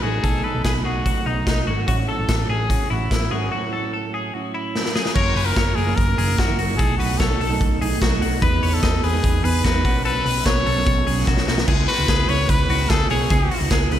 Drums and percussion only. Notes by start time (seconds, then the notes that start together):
0.24 kick, closed hi-hat
0.65 kick, snare, closed hi-hat
1.06 kick, closed hi-hat
1.47 kick, snare, closed hi-hat
1.88 kick, closed hi-hat
2.29 kick, snare, closed hi-hat
2.70 kick, closed hi-hat
3.11 kick, snare, closed hi-hat
4.76 snare
4.86 snare
4.96 snare
5.06 snare
5.15 kick, crash
5.36 open hi-hat
5.56 kick, snare, closed hi-hat
5.77 open hi-hat
5.98 kick, closed hi-hat
6.18 open hi-hat
6.38 kick, snare, closed hi-hat
6.59 open hi-hat
6.79 kick, closed hi-hat
7.00 open hi-hat
7.20 kick, snare, closed hi-hat
7.41 open hi-hat
7.61 kick, closed hi-hat
7.82 open hi-hat
8.02 kick, snare, closed hi-hat
8.22 open hi-hat
8.42 kick, closed hi-hat
8.63 open hi-hat
8.83 kick, snare, closed hi-hat
9.04 open hi-hat
9.24 kick, closed hi-hat
9.45 open hi-hat
9.65 kick, snare, closed hi-hat
9.85 kick, open hi-hat
10.05 closed hi-hat
10.26 open hi-hat
10.46 kick, snare, closed hi-hat
10.66 open hi-hat
10.87 kick, closed hi-hat
11.07 open hi-hat
11.27 kick, snare
11.37 snare
11.48 snare
11.58 snare
11.68 kick, crash
11.89 open hi-hat
12.08 kick, snare, hi-hat pedal, ride
12.29 open hi-hat
12.49 kick, hi-hat pedal, ride
12.70 open hi-hat
12.89 kick, snare, hi-hat pedal, ride
13.10 open hi-hat
13.30 kick, hi-hat pedal, ride
13.51 open hi-hat
13.71 kick, snare, hi-hat pedal, ride
13.91 open hi-hat